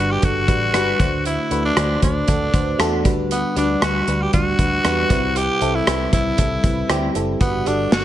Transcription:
Already playing: fingered electric bass G1, fm electric piano G2 G3 D4 F#4 B4 D5, tenor saxophone F#4
0.11 tenor saxophone G4
0.22 fingered electric bass G1, fm electric piano G3 D4 F#4 A4, tenor saxophone F#4, kick, closed hi-hat
0.47 fingered electric bass A1, fm electric piano G3 D4 F#4 B4, kick, closed hi-hat
0.73 fingered electric bass G1, fm electric piano G3 D4 F#4 B4, cross-stick, closed hi-hat
0.99 fingered electric bass D2, fm electric piano D3 A3 D4 F#4 C5, kick, closed hi-hat
1.25 tenor saxophone E4, closed hi-hat
1.51 fingered electric bass D2, fm electric piano A3 D4 F#4 B4, closed hi-hat
1.65 tenor saxophone D4
1.76 fingered electric bass D2, fm electric piano A3 D4 F#4 C5, cross-stick, closed hi-hat
2.02 fingered electric bass D2, fm electric piano A3 D4 F#4 C5, tenor saxophone D4, kick, closed hi-hat
2.28 fingered electric bass D2, fm electric piano A3 D4 F#4 A4, kick, closed hi-hat
2.53 fingered electric bass D2, fm electric piano A3 D4 F#4 C5, kick, closed hi-hat
2.79 fingered electric bass E2, fm electric piano A3 D4 F#4 A4, cross-stick, closed hi-hat
3.04 fingered electric bass D2, fm electric piano D3 G3 D4 F#4 B4, kick, closed hi-hat
3.31 tenor saxophone B3, closed hi-hat
3.56 fingered electric bass D2, fm electric piano G3 D4 F#4 B4, tenor saxophone D4, closed hi-hat
3.82 fingered electric bass D2, fm electric piano G3 D4 F#4 B4, tenor saxophone F#4, cross-stick, closed hi-hat
4.07 fingered electric bass D2, fm electric piano G3 D4 F#4 B4, closed hi-hat
4.22 tenor saxophone G4
4.33 fingered electric bass D2, fm electric piano G3 D4 F#4 D5, tenor saxophone F#4, kick, closed hi-hat
4.58 fingered electric bass D2, fm electric piano G3 D4 F#4 B4, kick, closed hi-hat
4.84 fingered electric bass E2, fm electric piano G3 D4 F#4 B4, cross-stick, closed hi-hat
5.09 fingered electric bass C2, fm electric piano C3 G3 C4 E4 B4, kick, closed hi-hat
5.36 tenor saxophone G4, closed hi-hat
5.61 fingered electric bass C2, fm electric piano G3 C4 E4 A4, closed hi-hat
5.75 tenor saxophone E4
5.86 fingered electric bass C2, fm electric piano G3 C4 E4 B4, cross-stick, closed hi-hat
6.12 fingered electric bass C2, fm electric piano G3 C4 E4 B4, tenor saxophone E4, kick, closed hi-hat
6.37 fingered electric bass C2, fm electric piano G3 C4 E4 A4, kick, closed hi-hat
6.63 fingered electric bass C2, fm electric piano G3 C4 E4 B4, kick, closed hi-hat
6.89 fingered electric bass D2, fm electric piano G3 C4 E4 G4, cross-stick, closed hi-hat
7.15 fingered electric bass F#1, fm electric piano G3 C4 E4 A4, closed hi-hat
7.40 fingered electric bass G1, fm electric piano G2 G3 D4 F#4 B4, tenor saxophone B3, kick, closed hi-hat
7.66 fingered electric bass G1, fm electric piano G3 D4 F#4 A4, tenor saxophone D4, closed hi-hat
7.91 fingered electric bass G1, fm electric piano G3 D4 F#4 D5, tenor saxophone F#4, snare, closed hi-hat

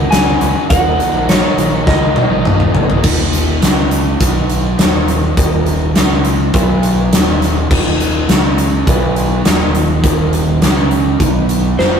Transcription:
Already playing: fingered electric bass C#2
0.00 overdriven electric guitar F#3 A#3 C#4 F#4
0.11 overdriven electric guitar F#2 C#3 F#3, electric slide guitar G#5, snare, closed hi-hat
0.15 overdriven electric guitar A#3 C#4 F#4
0.41 fingered electric bass C#2, overdriven electric guitar F#3 A#3 C#4 F#4, closed hi-hat
0.56 overdriven electric guitar F#3 A#3 C#4 F#4
0.70 fingered electric bass D#1, overdriven electric guitar D#2 A#2 D#3 F#3 A#3 D#4, electric slide guitar F#5, kick, closed hi-hat
0.85 overdriven electric guitar D#3 F#3 A#3 D#4
1.00 closed hi-hat
1.14 fingered electric bass A#1, overdriven electric guitar D#3 F#3 A#3 D#4
1.29 overdriven electric guitar D#2 A#2 D#3 F#3 A#3 D#4, electric slide guitar C#5, snare, closed hi-hat
1.57 fingered electric bass A#1, overdriven electric guitar D#3 F#3 A#3 D#4, closed hi-hat
1.72 overdriven electric guitar D#3 F#3 A#3 D#4
1.87 fingered electric bass C#2, electric slide guitar D#5, kick, snare
2.02 overdriven electric guitar D#3 F#3 A#3 D#4
2.15 overdriven electric guitar D#3 F#3 A#3 D#4, high tom
2.30 fingered electric bass A#1, overdriven electric guitar D#3 F#3 A#3 D#4
2.45 overdriven electric guitar D#2 A#2 D#3 F#3 A#3 D#4, mid tom
2.60 mid tom
2.74 fingered electric bass A#1, overdriven electric guitar D#3 F#3 A#3 D#4, floor tom
2.89 overdriven electric guitar D#3 F#3 A#3 D#4, floor tom
3.03 fingered electric bass D#1, overdriven electric guitar D#2 A#2 D#3, kick, crash
3.33 closed hi-hat
3.61 fingered electric bass C#2, overdriven electric guitar C#3 G#3 C#4, snare, closed hi-hat
3.91 closed hi-hat
4.20 fingered electric bass B1, overdriven electric guitar B2 F#3 B3, kick, closed hi-hat
4.49 closed hi-hat
4.79 fingered electric bass D#1, overdriven electric guitar D#2 A#2 D#3, snare, closed hi-hat
5.08 closed hi-hat
5.37 fingered electric bass D#1, overdriven electric guitar D#2 A#2 D#3, kick, closed hi-hat
5.66 closed hi-hat
5.95 fingered electric bass C#2, overdriven electric guitar C#3 G#3 C#4, snare, closed hi-hat
6.25 closed hi-hat
6.54 fingered electric bass B1, overdriven electric guitar B2 F#3 B3, kick, closed hi-hat
6.83 closed hi-hat
7.12 fingered electric bass D#1, overdriven electric guitar D#2 A#2 D#3, snare, closed hi-hat
7.42 snare, closed hi-hat
7.71 fingered electric bass D#1, overdriven electric guitar D#2 A#2 D#3, kick, crash
8.00 closed hi-hat
8.29 fingered electric bass C#2, overdriven electric guitar C#3 G#3 C#4, snare, closed hi-hat
8.58 closed hi-hat
8.86 fingered electric bass B1, overdriven electric guitar B2 F#3 B3, kick, closed hi-hat
9.16 closed hi-hat
9.45 fingered electric bass D#1, overdriven electric guitar D#2 A#2 D#3, snare, closed hi-hat
9.75 closed hi-hat
10.03 fingered electric bass D#1, overdriven electric guitar D#2 A#2 D#3, kick, closed hi-hat
10.33 closed hi-hat
10.62 fingered electric bass C#2, overdriven electric guitar C#3 G#3 C#4, snare, closed hi-hat
10.91 closed hi-hat
11.20 fingered electric bass B1, overdriven electric guitar B2 F#3 B3, kick, closed hi-hat
11.49 closed hi-hat
11.78 fingered electric bass F1, overdriven electric guitar F2 C3 F3, electric slide guitar C5, snare

